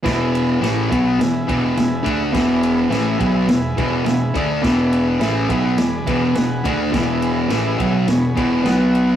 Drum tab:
RD |xxxxxxxx|xxxxxxxx|xxxxxxxx|xxxxxxxx|
SD |o-o-o-o-|o-o-o-o-|o-o-o-o-|o-o-o-o-|
BD |o--o-o-o|o--o-o-o|o--o-o-o|o--o-o--|